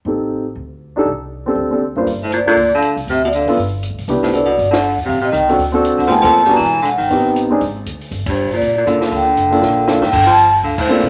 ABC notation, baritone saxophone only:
X:1
M:4/4
L:1/16
Q:"Swing" 1/4=238
K:Gm
V:1 name="Baritone saxophone" clef=bass
z16 | z16 | z2 A,,2 B,,2 B,,4 D,4 z2 | C,2 =B,,2 D,4 z8 |
z2 A,,2 =B,,2 B,,4 D,4 z2 | C,2 C,2 E,4 z6 D,3/2 E,/2 | F,2 F,4 G,2 =E,4 D,2 _E,2- | E,4 z12 |
z2 G,,4 B,,4 B,,2 D,2 D,2 | D,12 D,2 E,2 | D,2 F,4 z2 D,2 A,,6 |]